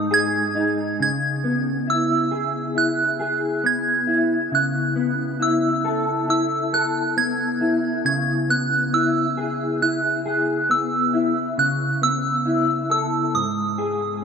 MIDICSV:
0, 0, Header, 1, 3, 480
1, 0, Start_track
1, 0, Key_signature, 4, "minor"
1, 0, Tempo, 882353
1, 537, Time_signature, 4, 2, 24, 8
1, 7748, End_track
2, 0, Start_track
2, 0, Title_t, "Synth bell"
2, 0, Program_c, 0, 98
2, 0, Note_on_c, 0, 87, 72
2, 74, Note_on_c, 0, 92, 103
2, 282, Note_off_c, 0, 87, 0
2, 551, Note_off_c, 0, 92, 0
2, 557, Note_on_c, 0, 92, 86
2, 1034, Note_on_c, 0, 88, 74
2, 1041, Note_off_c, 0, 92, 0
2, 1511, Note_on_c, 0, 90, 82
2, 1519, Note_off_c, 0, 88, 0
2, 1993, Note_on_c, 0, 92, 82
2, 1998, Note_off_c, 0, 90, 0
2, 2474, Note_on_c, 0, 90, 77
2, 2479, Note_off_c, 0, 92, 0
2, 2951, Note_on_c, 0, 88, 77
2, 2960, Note_off_c, 0, 90, 0
2, 3421, Note_off_c, 0, 88, 0
2, 3428, Note_on_c, 0, 88, 74
2, 3646, Note_off_c, 0, 88, 0
2, 3666, Note_on_c, 0, 90, 75
2, 3904, Note_on_c, 0, 92, 85
2, 3909, Note_off_c, 0, 90, 0
2, 4377, Note_off_c, 0, 92, 0
2, 4384, Note_on_c, 0, 92, 78
2, 4626, Note_on_c, 0, 90, 80
2, 4627, Note_off_c, 0, 92, 0
2, 4863, Note_on_c, 0, 88, 72
2, 4869, Note_off_c, 0, 90, 0
2, 5344, Note_on_c, 0, 90, 81
2, 5354, Note_off_c, 0, 88, 0
2, 5826, Note_on_c, 0, 88, 69
2, 5835, Note_off_c, 0, 90, 0
2, 6305, Note_on_c, 0, 90, 81
2, 6316, Note_off_c, 0, 88, 0
2, 6525, Note_off_c, 0, 90, 0
2, 6546, Note_on_c, 0, 88, 77
2, 7019, Note_off_c, 0, 88, 0
2, 7025, Note_on_c, 0, 88, 68
2, 7262, Note_on_c, 0, 87, 60
2, 7268, Note_off_c, 0, 88, 0
2, 7748, Note_off_c, 0, 87, 0
2, 7748, End_track
3, 0, Start_track
3, 0, Title_t, "Clean electric guitar"
3, 0, Program_c, 1, 27
3, 0, Note_on_c, 1, 44, 75
3, 0, Note_on_c, 1, 63, 62
3, 59, Note_on_c, 1, 68, 70
3, 294, Note_off_c, 1, 63, 0
3, 300, Note_on_c, 1, 63, 63
3, 541, Note_on_c, 1, 49, 69
3, 586, Note_off_c, 1, 44, 0
3, 587, Note_off_c, 1, 63, 0
3, 782, Note_on_c, 1, 59, 50
3, 1019, Note_on_c, 1, 64, 50
3, 1256, Note_off_c, 1, 68, 0
3, 1258, Note_on_c, 1, 68, 54
3, 1496, Note_off_c, 1, 64, 0
3, 1498, Note_on_c, 1, 64, 49
3, 1731, Note_off_c, 1, 68, 0
3, 1738, Note_on_c, 1, 68, 61
3, 1975, Note_off_c, 1, 59, 0
3, 1977, Note_on_c, 1, 59, 49
3, 2213, Note_off_c, 1, 64, 0
3, 2215, Note_on_c, 1, 64, 53
3, 2449, Note_off_c, 1, 49, 0
3, 2456, Note_on_c, 1, 49, 69
3, 2505, Note_off_c, 1, 68, 0
3, 2695, Note_off_c, 1, 59, 0
3, 2697, Note_on_c, 1, 59, 51
3, 2934, Note_off_c, 1, 64, 0
3, 2936, Note_on_c, 1, 64, 55
3, 3180, Note_on_c, 1, 69, 61
3, 3416, Note_off_c, 1, 64, 0
3, 3419, Note_on_c, 1, 64, 49
3, 3656, Note_off_c, 1, 69, 0
3, 3662, Note_on_c, 1, 69, 59
3, 3897, Note_off_c, 1, 59, 0
3, 3899, Note_on_c, 1, 59, 54
3, 4137, Note_off_c, 1, 64, 0
3, 4139, Note_on_c, 1, 64, 55
3, 4370, Note_off_c, 1, 49, 0
3, 4376, Note_on_c, 1, 49, 72
3, 4428, Note_off_c, 1, 69, 0
3, 4618, Note_off_c, 1, 59, 0
3, 4620, Note_on_c, 1, 59, 51
3, 4858, Note_off_c, 1, 64, 0
3, 4860, Note_on_c, 1, 64, 54
3, 5100, Note_on_c, 1, 68, 63
3, 5338, Note_off_c, 1, 64, 0
3, 5340, Note_on_c, 1, 64, 52
3, 5573, Note_off_c, 1, 68, 0
3, 5579, Note_on_c, 1, 68, 62
3, 5815, Note_off_c, 1, 59, 0
3, 5817, Note_on_c, 1, 59, 55
3, 6055, Note_off_c, 1, 64, 0
3, 6057, Note_on_c, 1, 64, 54
3, 6291, Note_off_c, 1, 49, 0
3, 6298, Note_on_c, 1, 49, 72
3, 6345, Note_off_c, 1, 59, 0
3, 6345, Note_off_c, 1, 64, 0
3, 6346, Note_off_c, 1, 68, 0
3, 6537, Note_on_c, 1, 59, 51
3, 6776, Note_on_c, 1, 64, 54
3, 7017, Note_on_c, 1, 69, 57
3, 7258, Note_on_c, 1, 44, 64
3, 7304, Note_off_c, 1, 64, 0
3, 7305, Note_off_c, 1, 49, 0
3, 7305, Note_off_c, 1, 59, 0
3, 7305, Note_off_c, 1, 69, 0
3, 7498, Note_on_c, 1, 68, 61
3, 7748, Note_off_c, 1, 44, 0
3, 7748, Note_off_c, 1, 68, 0
3, 7748, End_track
0, 0, End_of_file